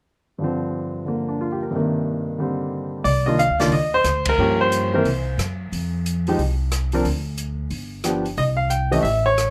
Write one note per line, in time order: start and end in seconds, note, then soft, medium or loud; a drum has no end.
0.39 1.69 G2 soft
0.39 1.03 D3 soft
0.39 1.74 F3 soft
0.44 1.75 C4 soft
1.05 1.72 D3 soft
1.05 1.74 A#3 soft
1.28 1.45 D4 soft
1.41 1.60 F4 soft
1.52 1.68 G4 soft
1.63 1.79 A#4 soft
1.71 3.05 G2 soft
1.71 3.06 C3 soft
1.75 3.07 D#3 soft
1.75 3.08 A#3 soft
2.38 3.05 D3 soft
2.38 3.06 G3 soft
2.38 3.07 C4 soft
3.04 3.46 C2 medium
3.04 3.27 D5 medium
3.04 open hi-hat soft
3.26 3.38 D#3 soft
3.26 3.38 A#3 soft
3.26 3.38 D4 soft
3.26 3.38 F4 medium
3.26 3.39 D#5 medium
3.39 3.59 F5 medium
3.39 closed hi-hat soft
3.50 3.60 D2 soft
3.60 3.71 C#2 medium
3.60 3.71 D#3 medium
3.60 3.71 A#3 soft
3.60 3.71 D4 medium
3.60 3.72 F4 medium
3.60 3.73 D5 medium
3.60 snare soft
3.60 open hi-hat soft
3.72 4.03 D#2 medium
3.72 3.94 D#5 medium
3.72 open hi-hat soft
3.94 4.28 C5 medium
4.04 4.36 D2 medium
4.04 cross-stick medium
4.04 closed hi-hat soft
4.25 4.59 A#4 medium
4.25 kick medium
4.25 ride medium
4.38 5.02 G2 medium
4.38 4.89 F3 soft
4.38 4.89 A#3 medium
4.38 4.89 C#4 soft
4.38 4.89 G4 medium
4.61 4.92 C5 medium
4.72 closed hi-hat soft
4.94 5.05 E3 medium
4.94 5.05 A#3 soft
4.94 5.05 C4 medium
4.94 5.05 A#4 medium
4.94 5.36 C5 medium
5.05 5.36 C2 medium
5.05 open hi-hat soft
5.38 5.69 F#2 medium
5.38 cross-stick medium
5.38 closed hi-hat soft
5.72 6.35 F2 medium
5.72 open hi-hat soft
6.06 closed hi-hat soft
6.27 6.38 F3 medium
6.27 6.38 G#3 soft
6.27 6.38 D#4 medium
6.27 6.38 G4 medium
6.27 open hi-hat soft
6.38 7.01 C2 medium
6.38 open hi-hat soft
6.72 cross-stick medium
6.72 closed hi-hat soft
6.92 7.04 F3 medium
6.92 7.04 C4 soft
6.92 7.04 D4 medium
6.92 7.05 A#4 medium
6.92 open hi-hat soft
7.05 7.68 D2 medium
7.05 open hi-hat soft
7.38 closed hi-hat soft
7.70 8.34 G1 medium
7.70 open hi-hat soft
8.04 8.23 F3 soft
8.04 8.23 B3 soft
8.04 8.23 D4 soft
8.04 8.24 G4 soft
8.04 cross-stick medium
8.04 closed hi-hat soft
8.26 open hi-hat soft
8.37 9.01 C2 medium
8.37 8.43 D#5 medium
8.37 open hi-hat soft
8.57 8.70 F5 medium
8.70 8.92 G5 medium
8.70 closed hi-hat soft
8.91 9.03 E3 medium
8.91 9.03 A3 medium
8.91 9.03 C#4 soft
8.91 9.03 G4 medium
8.91 8.97 D#5 medium
8.91 open hi-hat soft
9.03 9.50 A1 medium
9.03 9.25 E5 medium
9.03 open hi-hat soft
9.26 9.50 C#5 medium
9.38 cross-stick medium
9.38 closed hi-hat soft